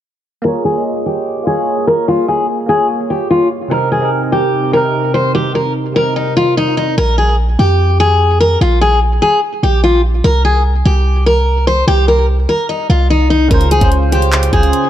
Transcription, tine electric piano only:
0.42 A#3 F4 G#4
0.48 C#5
0.72 A#3 F4 G#4
0.78 D#5
1.43 A#3 F4 G#4
1.49 C#5
2.66 A#3 F4 G#4
2.72 C#5
3.68 C3 C4 D#4
3.74 A#4
3.99 C3 C4 D#4
4.05 A#4
4.71 C3 C4 D#4
4.77 A#4
5.93 C3 C4 D#4
5.98 A#4
13.48 C#3 C#4 F4
13.54 C5
13.79 C#3 C#4 F4
13.85 C5
14.09 C#3 C#4 F4
14.15 C5
14.50 C#3 C#4 F4
14.56 C5

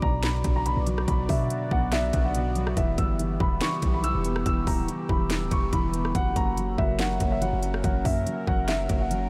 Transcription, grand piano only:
0.02 A#5
0.23 B5
0.56 A#5
0.66 B5
1.08 B5
1.29 E5
1.72 F#5
1.93 E5
2.25 F#5
2.77 E5
2.98 E6
3.40 B5
3.62 C#6
3.94 B5
4.04 E6
4.46 E6
4.67 A#5
5.09 B5
5.52 C#6
5.73 B5
6.15 F#5
6.36 A#5
6.78 E5
6.99 F#5
7.32 E5
7.42 F#5
7.84 F#5
8.05 E5
8.47 F#5
8.68 E5
9.01 F#5

